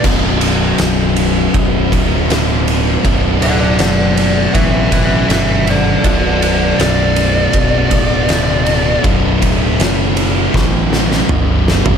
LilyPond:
<<
  \new Staff \with { instrumentName = "Lead electric guitar" } { \time 4/4 \key b \minor \tempo 4 = 80 r1 | r8 <d'' fis''>8 <d'' fis''>8 <d'' fis''>8 <b' e''>8 <b' e''>8 <b' e''>8 <a' d''>8 | <a' d''>8 <a' d''>8 d''2. | r1 | }
  \new Staff \with { instrumentName = "Distorted electric guitar" } { \clef bass \time 4/4 \key b \minor <b,, fis, b,>1 | <b,, fis, b,>1 | <b,, fis, b,>1 | <b,, fis, b,>1 | }
  \new Staff \with { instrumentName = "Distorted electric guitar" } { \clef bass \time 4/4 \key b \minor <b,, fis, b,>1 | <b,, fis, b,>1 | <b,, fis, b,>1 | <b,, fis, b,>1 | }
  \new Staff \with { instrumentName = "Overdriven electric guitar" } { \clef bass \time 4/4 \key b \minor <b,, fis, b,>2~ <b,, fis, b,>8 <b,, fis, b,>8 <b,, fis, b,>4 | <b,, fis, b,>2~ <b,, fis, b,>8 <b,, fis, b,>8 <b,, fis, b,>4 | <b,, fis, b,>2~ <b,, fis, b,>8 <b,, fis, b,>8 <b,, fis, b,>4 | <b,, fis, b,>2~ <b,, fis, b,>8 <b,, fis, b,>8 <b,, fis, b,>4 | }
  \new Staff \with { instrumentName = "Picked electric bass" } { \clef bass \time 4/4 \key b \minor b,,,4 b,,,4 b,,,8 d,,8 d,,4 | b,,,8 d,,8 fis,,4 a,,4 g,,4 | b,,,4 b,,,4 b,,,8 d,,8 d,,4 | b,,,8 d,,8 fis,,4 a,,4 g,,4 | }
  \new DrumStaff \with { instrumentName = "Drums" } \drummode { \time 4/4 <cymc bd>8 cymr8 <cymr sn>8 cymr8 <bd cymr>8 <bd cymr>8 <cymr sn>8 cymr8 | <bd cymr>8 cymr8 <cymr sn>8 cymr8 <bd cymr>8 <bd cymr>8 <cymr sn>8 cymr8 | <bd cymr>8 cymr8 <cymr sn>8 cymr8 <bd cymr>8 <bd cymr>8 <cymr sn>8 cymr8 | <bd cymr>8 <bd cymr>8 <cymr sn>8 cymr8 <bd sn>8 sn16 sn16 toml8 sn16 tomfh16 | }
>>